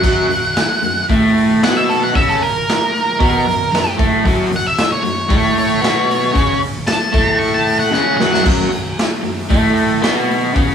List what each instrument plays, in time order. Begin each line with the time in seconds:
Already playing: lead electric guitar F#5
0.02 overdriven electric guitar F#2 F#3, kick, crash
0.29 overdriven electric guitar F#2, open hi-hat
0.56 snare, open hi-hat
0.82 overdriven electric guitar F#2, open hi-hat
1.09 overdriven electric guitar A2 A3, kick, open hi-hat
1.38 open hi-hat
1.63 overdriven electric guitar B2 B3, lead electric guitar F#5, snare, open hi-hat
1.77 lead electric guitar E5
1.89 lead electric guitar A4, open hi-hat
2.04 lead electric guitar F#5
2.14 overdriven electric guitar C#3 C#4, lead electric guitar E5, kick, open hi-hat
2.29 lead electric guitar A4, snare
2.42 lead electric guitar A#4, open hi-hat
2.69 snare, open hi-hat
2.95 open hi-hat
3.19 overdriven electric guitar B2 B3, kick, open hi-hat
3.47 overdriven electric guitar F#2, open hi-hat
3.72 overdriven electric guitar F#2, snare, open hi-hat
3.98 overdriven electric guitar A2 A3, kick, open hi-hat
4.24 overdriven electric guitar F#2 F#3, kick, open hi-hat
4.52 overdriven electric guitar F#2, open hi-hat
4.56 lead electric guitar F#5
4.66 lead electric guitar E5
4.78 snare, open hi-hat
4.92 lead electric guitar C#5
5.03 overdriven electric guitar F#2, open hi-hat
5.29 overdriven electric guitar A2 A3, kick, open hi-hat
5.57 lead electric guitar C#5, open hi-hat
5.81 overdriven electric guitar B2 B3, snare, open hi-hat
6.11 open hi-hat
6.33 overdriven electric guitar C#3 C#4, kick, open hi-hat
6.62 open hi-hat
6.87 lead electric guitar A5, snare, open hi-hat
7.12 overdriven electric guitar A2 A3, kick, open hi-hat
7.39 lead electric guitar C#6, open hi-hat
7.54 lead electric guitar A5
7.67 open hi-hat
7.79 lead electric guitar F#5
7.92 overdriven electric guitar C#3 C#4, snare
8.17 overdriven electric guitar F#2 F#3, lead electric guitar F#5, snare
8.34 snare
8.43 overdriven electric guitar F#2 F#3, kick, crash
8.61 snare
8.70 overdriven electric guitar F#2, open hi-hat
8.99 snare, open hi-hat
9.23 overdriven electric guitar F#2, open hi-hat
9.49 overdriven electric guitar A2 A3, kick, open hi-hat
9.77 open hi-hat
10.02 overdriven electric guitar B2 B3, snare, open hi-hat
10.31 open hi-hat
10.54 overdriven electric guitar C#3 C#4, kick, open hi-hat
10.70 snare